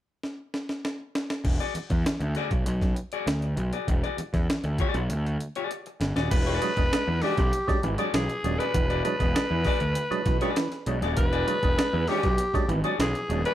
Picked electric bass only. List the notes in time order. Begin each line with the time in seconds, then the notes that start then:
1.45 E1
1.75 muted picked electric bass stroke
1.91 E2
2.20 D2
2.51 B1
2.66 B1
3.27 D2
3.57 B1
3.88 E1
4.18 muted picked electric bass stroke
4.34 E2
4.64 D2
4.94 B1
5.09 D2
6.01 G1
6.16 D#1
6.32 E1
6.77 E1
6.93 muted picked electric bass stroke
7.08 E2
7.38 B1
7.68 muted picked electric bass stroke
7.83 G#1
8.14 B1
8.44 D#1
8.74 E1
9.20 E1
9.36 muted picked electric bass stroke
9.51 E2
9.81 D2
10.11 muted picked electric bass stroke
10.26 B1
10.87 B1
11.02 D#1
11.17 E1
11.63 E1
11.78 muted picked electric bass stroke
11.93 E2
12.24 B1
12.54 muted picked electric bass stroke
12.68 G#1
12.99 B1
13.29 D#1